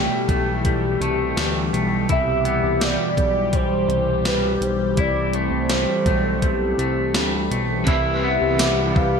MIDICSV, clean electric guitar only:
0, 0, Header, 1, 2, 480
1, 0, Start_track
1, 0, Key_signature, 0, "major"
1, 0, Tempo, 722892
1, 1389, Time_signature, 4, 2, 24, 8
1, 6108, End_track
2, 0, Start_track
2, 0, Title_t, "Clean electric guitar"
2, 0, Program_c, 0, 27
2, 0, Note_on_c, 0, 55, 53
2, 0, Note_on_c, 0, 57, 57
2, 0, Note_on_c, 0, 64, 60
2, 182, Note_off_c, 0, 57, 0
2, 190, Note_on_c, 0, 57, 61
2, 434, Note_off_c, 0, 55, 0
2, 437, Note_on_c, 0, 55, 52
2, 665, Note_off_c, 0, 57, 0
2, 673, Note_on_c, 0, 57, 60
2, 913, Note_off_c, 0, 55, 0
2, 916, Note_on_c, 0, 55, 53
2, 1144, Note_off_c, 0, 57, 0
2, 1152, Note_on_c, 0, 57, 48
2, 1391, Note_off_c, 0, 64, 0
2, 1394, Note_on_c, 0, 64, 62
2, 1438, Note_off_c, 0, 57, 0
2, 1628, Note_on_c, 0, 59, 54
2, 1863, Note_off_c, 0, 55, 0
2, 1866, Note_on_c, 0, 55, 51
2, 2109, Note_off_c, 0, 59, 0
2, 2345, Note_off_c, 0, 55, 0
2, 2347, Note_on_c, 0, 55, 49
2, 2823, Note_off_c, 0, 55, 0
2, 2826, Note_on_c, 0, 55, 52
2, 3307, Note_off_c, 0, 64, 0
2, 3310, Note_on_c, 0, 64, 61
2, 3550, Note_on_c, 0, 57, 52
2, 3570, Note_off_c, 0, 55, 0
2, 3788, Note_on_c, 0, 55, 51
2, 4021, Note_off_c, 0, 57, 0
2, 4029, Note_on_c, 0, 57, 61
2, 4268, Note_off_c, 0, 55, 0
2, 4271, Note_on_c, 0, 55, 44
2, 4500, Note_off_c, 0, 57, 0
2, 4508, Note_on_c, 0, 57, 51
2, 4745, Note_off_c, 0, 55, 0
2, 4748, Note_on_c, 0, 55, 50
2, 4981, Note_off_c, 0, 57, 0
2, 4989, Note_on_c, 0, 57, 53
2, 5230, Note_off_c, 0, 64, 0
2, 5233, Note_on_c, 0, 64, 61
2, 5277, Note_off_c, 0, 57, 0
2, 5469, Note_on_c, 0, 59, 64
2, 5706, Note_off_c, 0, 55, 0
2, 5708, Note_on_c, 0, 55, 62
2, 6108, Note_off_c, 0, 55, 0
2, 6108, Note_off_c, 0, 59, 0
2, 6108, Note_off_c, 0, 64, 0
2, 6108, End_track
0, 0, End_of_file